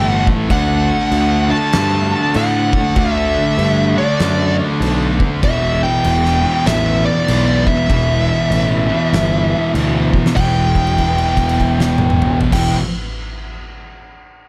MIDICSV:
0, 0, Header, 1, 7, 480
1, 0, Start_track
1, 0, Key_signature, 1, "minor"
1, 0, Tempo, 616016
1, 393, Time_signature, 4, 2, 24, 8
1, 11287, End_track
2, 0, Start_track
2, 0, Title_t, "Lead electric guitar"
2, 0, Program_c, 0, 29
2, 0, Note_on_c, 0, 79, 100
2, 64, Note_off_c, 0, 79, 0
2, 64, Note_on_c, 0, 78, 100
2, 192, Note_off_c, 0, 78, 0
2, 400, Note_on_c, 0, 78, 100
2, 1176, Note_off_c, 0, 78, 0
2, 1179, Note_on_c, 0, 81, 116
2, 1840, Note_off_c, 0, 81, 0
2, 1844, Note_on_c, 0, 78, 95
2, 2320, Note_on_c, 0, 77, 96
2, 2331, Note_off_c, 0, 78, 0
2, 2452, Note_off_c, 0, 77, 0
2, 2452, Note_on_c, 0, 76, 96
2, 3098, Note_off_c, 0, 76, 0
2, 3101, Note_on_c, 0, 74, 90
2, 3545, Note_off_c, 0, 74, 0
2, 4240, Note_on_c, 0, 76, 103
2, 4516, Note_off_c, 0, 76, 0
2, 4546, Note_on_c, 0, 79, 107
2, 5198, Note_on_c, 0, 76, 104
2, 5218, Note_off_c, 0, 79, 0
2, 5494, Note_off_c, 0, 76, 0
2, 5497, Note_on_c, 0, 74, 102
2, 5978, Note_off_c, 0, 74, 0
2, 5981, Note_on_c, 0, 76, 88
2, 7567, Note_off_c, 0, 76, 0
2, 8074, Note_on_c, 0, 79, 87
2, 9652, Note_off_c, 0, 79, 0
2, 9764, Note_on_c, 0, 79, 88
2, 9933, Note_off_c, 0, 79, 0
2, 11287, End_track
3, 0, Start_track
3, 0, Title_t, "String machine"
3, 0, Program_c, 1, 50
3, 0, Note_on_c, 1, 57, 79
3, 0, Note_on_c, 1, 64, 76
3, 0, Note_on_c, 1, 71, 92
3, 365, Note_off_c, 1, 71, 0
3, 366, Note_off_c, 1, 64, 0
3, 368, Note_off_c, 1, 57, 0
3, 396, Note_on_c, 1, 69, 65
3, 396, Note_on_c, 1, 76, 90
3, 403, Note_on_c, 1, 62, 81
3, 4201, Note_off_c, 1, 69, 0
3, 4201, Note_off_c, 1, 76, 0
3, 4205, Note_off_c, 1, 62, 0
3, 4234, Note_on_c, 1, 64, 90
3, 4235, Note_on_c, 1, 71, 75
3, 4237, Note_on_c, 1, 79, 91
3, 6137, Note_off_c, 1, 79, 0
3, 6164, Note_on_c, 1, 76, 91
3, 8045, Note_off_c, 1, 64, 0
3, 8045, Note_off_c, 1, 71, 0
3, 8061, Note_off_c, 1, 76, 0
3, 8068, Note_on_c, 1, 64, 81
3, 8072, Note_on_c, 1, 71, 76
3, 8072, Note_on_c, 1, 79, 84
3, 9649, Note_off_c, 1, 64, 0
3, 9651, Note_off_c, 1, 71, 0
3, 9651, Note_off_c, 1, 79, 0
3, 11287, End_track
4, 0, Start_track
4, 0, Title_t, "Distorted electric guitar"
4, 0, Program_c, 2, 30
4, 0, Note_on_c, 2, 45, 79
4, 0, Note_on_c, 2, 52, 78
4, 0, Note_on_c, 2, 57, 100
4, 383, Note_off_c, 2, 45, 0
4, 388, Note_off_c, 2, 52, 0
4, 411, Note_off_c, 2, 57, 0
4, 11287, End_track
5, 0, Start_track
5, 0, Title_t, "Distorted electric guitar"
5, 0, Program_c, 3, 30
5, 0, Note_on_c, 3, 45, 74
5, 0, Note_on_c, 3, 52, 93
5, 0, Note_on_c, 3, 57, 99
5, 378, Note_off_c, 3, 45, 0
5, 384, Note_off_c, 3, 52, 0
5, 384, Note_on_c, 3, 50, 102
5, 392, Note_off_c, 3, 57, 0
5, 392, Note_on_c, 3, 57, 115
5, 401, Note_on_c, 3, 62, 124
5, 1159, Note_off_c, 3, 62, 0
5, 1162, Note_on_c, 3, 62, 72
5, 1169, Note_off_c, 3, 57, 0
5, 1172, Note_on_c, 3, 57, 80
5, 1180, Note_off_c, 3, 50, 0
5, 1183, Note_on_c, 3, 50, 78
5, 1815, Note_off_c, 3, 50, 0
5, 1815, Note_off_c, 3, 62, 0
5, 1820, Note_off_c, 3, 57, 0
5, 1824, Note_on_c, 3, 50, 88
5, 1835, Note_on_c, 3, 57, 87
5, 1844, Note_on_c, 3, 62, 93
5, 2297, Note_off_c, 3, 50, 0
5, 2302, Note_off_c, 3, 57, 0
5, 2305, Note_on_c, 3, 50, 105
5, 2306, Note_off_c, 3, 62, 0
5, 2317, Note_on_c, 3, 57, 104
5, 2323, Note_on_c, 3, 62, 114
5, 3071, Note_off_c, 3, 50, 0
5, 3077, Note_off_c, 3, 57, 0
5, 3078, Note_off_c, 3, 62, 0
5, 3087, Note_on_c, 3, 62, 78
5, 3098, Note_on_c, 3, 57, 78
5, 3107, Note_on_c, 3, 50, 69
5, 3732, Note_off_c, 3, 50, 0
5, 3738, Note_off_c, 3, 62, 0
5, 3741, Note_off_c, 3, 57, 0
5, 3741, Note_on_c, 3, 50, 75
5, 3751, Note_on_c, 3, 57, 86
5, 3760, Note_on_c, 3, 62, 78
5, 4216, Note_off_c, 3, 50, 0
5, 4220, Note_off_c, 3, 57, 0
5, 4220, Note_on_c, 3, 40, 104
5, 4225, Note_off_c, 3, 62, 0
5, 4233, Note_on_c, 3, 47, 104
5, 4239, Note_on_c, 3, 52, 127
5, 4996, Note_off_c, 3, 47, 0
5, 5004, Note_off_c, 3, 52, 0
5, 5007, Note_on_c, 3, 52, 84
5, 5018, Note_on_c, 3, 47, 69
5, 5021, Note_off_c, 3, 40, 0
5, 5024, Note_on_c, 3, 40, 68
5, 5659, Note_off_c, 3, 40, 0
5, 5661, Note_off_c, 3, 47, 0
5, 5662, Note_on_c, 3, 40, 86
5, 5670, Note_on_c, 3, 47, 80
5, 5675, Note_off_c, 3, 52, 0
5, 5678, Note_on_c, 3, 52, 79
5, 6141, Note_off_c, 3, 40, 0
5, 6141, Note_off_c, 3, 47, 0
5, 6144, Note_on_c, 3, 40, 114
5, 6157, Note_on_c, 3, 47, 107
5, 6161, Note_off_c, 3, 52, 0
5, 6164, Note_on_c, 3, 52, 120
5, 6913, Note_off_c, 3, 40, 0
5, 6919, Note_off_c, 3, 47, 0
5, 6920, Note_off_c, 3, 52, 0
5, 6929, Note_on_c, 3, 52, 90
5, 6941, Note_on_c, 3, 47, 80
5, 6948, Note_on_c, 3, 40, 69
5, 7577, Note_off_c, 3, 40, 0
5, 7581, Note_off_c, 3, 52, 0
5, 7587, Note_off_c, 3, 47, 0
5, 7587, Note_on_c, 3, 40, 76
5, 7597, Note_on_c, 3, 47, 80
5, 7607, Note_on_c, 3, 52, 97
5, 8055, Note_off_c, 3, 40, 0
5, 8064, Note_on_c, 3, 40, 108
5, 8066, Note_off_c, 3, 47, 0
5, 8070, Note_off_c, 3, 52, 0
5, 8080, Note_on_c, 3, 47, 108
5, 8093, Note_on_c, 3, 52, 127
5, 9743, Note_off_c, 3, 40, 0
5, 9746, Note_on_c, 3, 40, 91
5, 9762, Note_off_c, 3, 47, 0
5, 9765, Note_on_c, 3, 47, 101
5, 9774, Note_off_c, 3, 52, 0
5, 9777, Note_on_c, 3, 52, 115
5, 9937, Note_off_c, 3, 40, 0
5, 9946, Note_off_c, 3, 47, 0
5, 9952, Note_off_c, 3, 52, 0
5, 11287, End_track
6, 0, Start_track
6, 0, Title_t, "Picked electric bass"
6, 0, Program_c, 4, 34
6, 0, Note_on_c, 4, 31, 92
6, 213, Note_off_c, 4, 31, 0
6, 392, Note_on_c, 4, 38, 106
6, 698, Note_off_c, 4, 38, 0
6, 868, Note_on_c, 4, 38, 93
6, 1176, Note_off_c, 4, 38, 0
6, 1358, Note_on_c, 4, 43, 106
6, 1662, Note_off_c, 4, 43, 0
6, 1834, Note_on_c, 4, 45, 104
6, 2140, Note_off_c, 4, 45, 0
6, 2308, Note_on_c, 4, 38, 104
6, 2615, Note_off_c, 4, 38, 0
6, 2790, Note_on_c, 4, 43, 99
6, 3097, Note_off_c, 4, 43, 0
6, 3273, Note_on_c, 4, 42, 111
6, 3579, Note_off_c, 4, 42, 0
6, 3743, Note_on_c, 4, 35, 100
6, 4052, Note_off_c, 4, 35, 0
6, 4232, Note_on_c, 4, 28, 102
6, 4539, Note_off_c, 4, 28, 0
6, 4713, Note_on_c, 4, 28, 101
6, 5019, Note_off_c, 4, 28, 0
6, 5191, Note_on_c, 4, 33, 111
6, 5499, Note_off_c, 4, 33, 0
6, 5676, Note_on_c, 4, 35, 89
6, 5982, Note_off_c, 4, 35, 0
6, 6151, Note_on_c, 4, 28, 99
6, 6459, Note_off_c, 4, 28, 0
6, 6628, Note_on_c, 4, 33, 100
6, 6937, Note_off_c, 4, 33, 0
6, 7110, Note_on_c, 4, 31, 106
6, 7418, Note_off_c, 4, 31, 0
6, 7592, Note_on_c, 4, 38, 99
6, 7900, Note_off_c, 4, 38, 0
6, 8080, Note_on_c, 4, 28, 108
6, 9655, Note_off_c, 4, 28, 0
6, 9758, Note_on_c, 4, 28, 86
6, 9930, Note_off_c, 4, 28, 0
6, 11287, End_track
7, 0, Start_track
7, 0, Title_t, "Drums"
7, 213, Note_on_c, 9, 36, 112
7, 291, Note_off_c, 9, 36, 0
7, 389, Note_on_c, 9, 49, 76
7, 391, Note_on_c, 9, 36, 121
7, 467, Note_off_c, 9, 49, 0
7, 469, Note_off_c, 9, 36, 0
7, 869, Note_on_c, 9, 49, 62
7, 947, Note_off_c, 9, 49, 0
7, 1344, Note_on_c, 9, 49, 60
7, 1352, Note_on_c, 9, 38, 109
7, 1422, Note_off_c, 9, 49, 0
7, 1430, Note_off_c, 9, 38, 0
7, 1825, Note_on_c, 9, 49, 61
7, 1903, Note_off_c, 9, 49, 0
7, 2128, Note_on_c, 9, 36, 107
7, 2206, Note_off_c, 9, 36, 0
7, 2305, Note_on_c, 9, 49, 72
7, 2309, Note_on_c, 9, 36, 127
7, 2382, Note_off_c, 9, 49, 0
7, 2387, Note_off_c, 9, 36, 0
7, 2794, Note_on_c, 9, 49, 58
7, 2871, Note_off_c, 9, 49, 0
7, 3269, Note_on_c, 9, 49, 55
7, 3276, Note_on_c, 9, 38, 97
7, 3347, Note_off_c, 9, 49, 0
7, 3354, Note_off_c, 9, 38, 0
7, 3754, Note_on_c, 9, 49, 60
7, 3832, Note_off_c, 9, 49, 0
7, 4052, Note_on_c, 9, 36, 94
7, 4130, Note_off_c, 9, 36, 0
7, 4231, Note_on_c, 9, 36, 127
7, 4233, Note_on_c, 9, 49, 74
7, 4309, Note_off_c, 9, 36, 0
7, 4311, Note_off_c, 9, 49, 0
7, 4709, Note_on_c, 9, 49, 66
7, 4787, Note_off_c, 9, 49, 0
7, 4869, Note_on_c, 9, 38, 35
7, 4947, Note_off_c, 9, 38, 0
7, 5192, Note_on_c, 9, 49, 61
7, 5200, Note_on_c, 9, 38, 107
7, 5270, Note_off_c, 9, 49, 0
7, 5278, Note_off_c, 9, 38, 0
7, 5674, Note_on_c, 9, 49, 76
7, 5752, Note_off_c, 9, 49, 0
7, 5975, Note_on_c, 9, 36, 103
7, 6053, Note_off_c, 9, 36, 0
7, 6154, Note_on_c, 9, 36, 127
7, 6158, Note_on_c, 9, 49, 73
7, 6231, Note_off_c, 9, 36, 0
7, 6236, Note_off_c, 9, 49, 0
7, 6635, Note_on_c, 9, 49, 62
7, 6713, Note_off_c, 9, 49, 0
7, 7117, Note_on_c, 9, 49, 57
7, 7124, Note_on_c, 9, 38, 89
7, 7194, Note_off_c, 9, 49, 0
7, 7202, Note_off_c, 9, 38, 0
7, 7597, Note_on_c, 9, 49, 68
7, 7675, Note_off_c, 9, 49, 0
7, 7898, Note_on_c, 9, 36, 77
7, 7975, Note_off_c, 9, 36, 0
7, 7995, Note_on_c, 9, 38, 94
7, 8073, Note_off_c, 9, 38, 0
7, 8078, Note_on_c, 9, 36, 113
7, 8080, Note_on_c, 9, 57, 87
7, 8156, Note_off_c, 9, 36, 0
7, 8158, Note_off_c, 9, 57, 0
7, 8378, Note_on_c, 9, 36, 69
7, 8381, Note_on_c, 9, 57, 46
7, 8456, Note_off_c, 9, 36, 0
7, 8459, Note_off_c, 9, 57, 0
7, 8469, Note_on_c, 9, 49, 51
7, 8546, Note_off_c, 9, 49, 0
7, 8556, Note_on_c, 9, 57, 50
7, 8557, Note_on_c, 9, 36, 58
7, 8634, Note_off_c, 9, 36, 0
7, 8634, Note_off_c, 9, 57, 0
7, 8713, Note_on_c, 9, 49, 53
7, 8791, Note_off_c, 9, 49, 0
7, 8860, Note_on_c, 9, 36, 75
7, 8861, Note_on_c, 9, 57, 57
7, 8938, Note_off_c, 9, 36, 0
7, 8939, Note_off_c, 9, 57, 0
7, 8953, Note_on_c, 9, 49, 61
7, 9031, Note_off_c, 9, 49, 0
7, 9038, Note_on_c, 9, 36, 65
7, 9042, Note_on_c, 9, 57, 46
7, 9116, Note_off_c, 9, 36, 0
7, 9119, Note_off_c, 9, 57, 0
7, 9197, Note_on_c, 9, 38, 100
7, 9275, Note_off_c, 9, 38, 0
7, 9336, Note_on_c, 9, 48, 110
7, 9414, Note_off_c, 9, 48, 0
7, 9429, Note_on_c, 9, 47, 97
7, 9507, Note_off_c, 9, 47, 0
7, 9520, Note_on_c, 9, 45, 103
7, 9598, Note_off_c, 9, 45, 0
7, 9667, Note_on_c, 9, 43, 109
7, 9745, Note_off_c, 9, 43, 0
7, 9759, Note_on_c, 9, 36, 113
7, 9761, Note_on_c, 9, 57, 111
7, 9768, Note_on_c, 9, 38, 100
7, 9837, Note_off_c, 9, 36, 0
7, 9839, Note_off_c, 9, 57, 0
7, 9846, Note_off_c, 9, 38, 0
7, 11287, End_track
0, 0, End_of_file